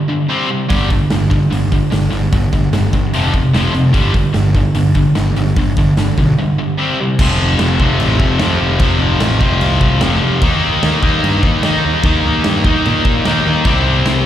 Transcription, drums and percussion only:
0.70 kick, open hi-hat
0.90 kick, open hi-hat
1.10 snare, open hi-hat
1.31 kick, open hi-hat
1.52 open hi-hat
1.72 kick, open hi-hat
1.92 snare, open hi-hat
2.13 open hi-hat
2.33 kick, open hi-hat
2.53 kick, open hi-hat
2.73 snare, open hi-hat
2.93 kick, open hi-hat
3.13 open hi-hat
3.34 kick, open hi-hat
3.54 snare, open hi-hat
3.74 open hi-hat
3.94 kick, open hi-hat
4.14 kick, open hi-hat
4.34 snare, open hi-hat
4.54 kick, open hi-hat
4.75 open hi-hat
4.95 kick, open hi-hat
5.15 snare, open hi-hat
5.36 open hi-hat
5.47 snare
5.56 kick, open hi-hat
5.77 kick, open hi-hat
5.97 snare, open hi-hat
6.17 kick, open hi-hat
7.19 kick, crash
7.59 snare, crash
7.80 kick
8.00 crash
8.20 kick
8.39 snare, crash
8.79 kick, crash
9.20 snare, crash
9.41 kick
9.61 crash
9.81 kick
10.01 snare, crash
10.42 kick, crash
10.83 snare, crash
11.03 kick
11.24 crash
11.43 kick
11.63 snare, crash
12.03 kick, crash
12.44 snare, crash
12.64 kick
12.85 crash
13.05 kick
13.25 snare, crash
13.65 kick, crash
14.06 snare, crash

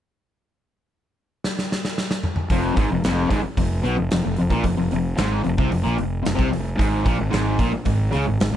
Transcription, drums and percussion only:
1.44 snare
1.59 snare
1.72 snare
1.85 snare
1.98 snare
2.11 snare
2.24 mid tom
2.36 mid tom
2.50 kick, open hi-hat
2.77 kick, open hi-hat
3.04 snare, open hi-hat
3.30 kick, open hi-hat
3.57 kick, open hi-hat
3.85 open hi-hat
4.11 snare, open hi-hat
4.36 open hi-hat
4.50 kick
4.64 kick, open hi-hat
4.91 open hi-hat
5.18 snare, open hi-hat
5.44 open hi-hat
5.58 kick
5.72 open hi-hat
5.98 open hi-hat
6.25 snare, open hi-hat
6.39 kick
6.53 open hi-hat
6.79 kick, open hi-hat
7.06 kick, open hi-hat
7.33 snare, open hi-hat
7.59 kick, open hi-hat
7.85 kick, open hi-hat
8.13 open hi-hat
8.40 snare, open hi-hat

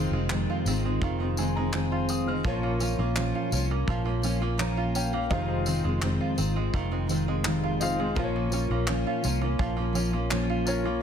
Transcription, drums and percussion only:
0.30 clap
0.66 tambourine
1.02 kick
1.37 tambourine
1.73 clap
2.09 tambourine
2.45 kick
2.80 tambourine
3.16 clap
3.52 tambourine
3.88 kick
4.23 tambourine
4.60 clap
4.95 tambourine
5.31 kick
5.66 tambourine
6.02 clap
6.38 tambourine
6.74 kick
7.09 tambourine
7.45 clap
7.81 tambourine
8.16 kick
8.52 tambourine
8.87 clap
9.24 tambourine
9.59 kick
9.95 tambourine
10.31 clap
10.67 tambourine

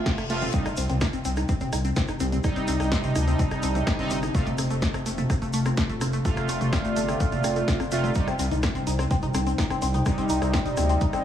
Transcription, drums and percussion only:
0.06 kick, snare, closed hi-hat
0.18 cross-stick, closed hi-hat
0.30 open hi-hat
0.42 closed hi-hat, mid tom
0.53 kick, closed hi-hat, shaker
0.66 cross-stick, closed hi-hat, shaker
0.77 open hi-hat, shaker
0.89 closed hi-hat, mid tom, shaker
1.01 kick, cross-stick, snare, closed hi-hat, shaker
1.13 closed hi-hat, shaker
1.25 open hi-hat, shaker
1.36 cross-stick, closed hi-hat, shaker
1.49 kick, closed hi-hat, shaker
1.60 closed hi-hat, mid tom, shaker
1.73 cross-stick, open hi-hat, shaker
1.85 closed hi-hat, shaker
1.96 kick, snare, closed hi-hat, shaker
2.08 cross-stick, closed hi-hat, shaker
2.20 open hi-hat, shaker
2.32 closed hi-hat, mid tom, shaker
2.44 kick, cross-stick, closed hi-hat, shaker
2.56 closed hi-hat, shaker
2.68 open hi-hat, shaker
2.80 cross-stick, closed hi-hat, shaker
2.92 kick, snare, closed hi-hat, shaker
3.03 closed hi-hat, mid tom, shaker
3.16 cross-stick, open hi-hat, shaker
3.28 closed hi-hat, shaker
3.39 kick, closed hi-hat, shaker
3.51 cross-stick, closed hi-hat, shaker
3.63 open hi-hat, shaker
3.75 closed hi-hat, mid tom, shaker
3.87 kick, cross-stick, snare, closed hi-hat, shaker
3.99 closed hi-hat, shaker
4.10 open hi-hat, shaker
4.23 cross-stick, closed hi-hat, shaker
4.35 kick, closed hi-hat, shaker
4.46 closed hi-hat, mid tom, shaker
4.58 cross-stick, open hi-hat, shaker
4.70 closed hi-hat, shaker
4.82 kick, snare, closed hi-hat, shaker
4.94 cross-stick, closed hi-hat, shaker
5.06 open hi-hat, shaker
5.18 closed hi-hat, mid tom, shaker
5.30 kick, cross-stick, closed hi-hat, shaker
5.42 closed hi-hat, shaker
5.53 open hi-hat, shaker
5.66 cross-stick, closed hi-hat, shaker
5.77 kick, snare, closed hi-hat, shaker
5.89 closed hi-hat, mid tom, shaker
6.01 cross-stick, open hi-hat, shaker
6.13 closed hi-hat, shaker
6.25 kick, closed hi-hat, shaker
6.37 cross-stick, closed hi-hat, shaker
6.49 open hi-hat, shaker
6.61 closed hi-hat, mid tom, shaker
6.73 kick, cross-stick, snare, closed hi-hat, shaker
6.85 closed hi-hat, shaker
6.96 open hi-hat, shaker
7.08 cross-stick, closed hi-hat, shaker
7.20 kick, closed hi-hat, shaker
7.32 closed hi-hat, mid tom, shaker
7.44 cross-stick, open hi-hat, shaker
7.56 closed hi-hat, shaker
7.68 kick, snare, closed hi-hat, shaker
7.80 cross-stick, closed hi-hat, shaker
7.92 open hi-hat, shaker
8.04 closed hi-hat, mid tom, shaker
8.15 kick, closed hi-hat, shaker
8.28 cross-stick, closed hi-hat, shaker
8.39 open hi-hat, shaker
8.51 closed hi-hat, mid tom, shaker
8.63 kick, cross-stick, snare, closed hi-hat, shaker
8.75 closed hi-hat, shaker
8.87 open hi-hat, shaker
8.99 cross-stick, closed hi-hat, shaker
9.11 kick, closed hi-hat, shaker
9.22 closed hi-hat, mid tom, shaker
9.34 cross-stick, open hi-hat, shaker
9.47 closed hi-hat, shaker
9.58 kick, snare, closed hi-hat, shaker
9.70 cross-stick, closed hi-hat, shaker
9.82 open hi-hat, shaker
9.94 closed hi-hat, mid tom, shaker
10.06 kick, cross-stick, closed hi-hat, shaker
10.18 closed hi-hat, shaker
10.29 open hi-hat, shaker
10.42 cross-stick, closed hi-hat, shaker
10.54 kick, snare, closed hi-hat, shaker
10.66 closed hi-hat, mid tom, shaker
10.77 cross-stick, open hi-hat, shaker
10.89 closed hi-hat, shaker
11.01 kick, closed hi-hat, shaker
11.13 cross-stick, closed hi-hat, shaker

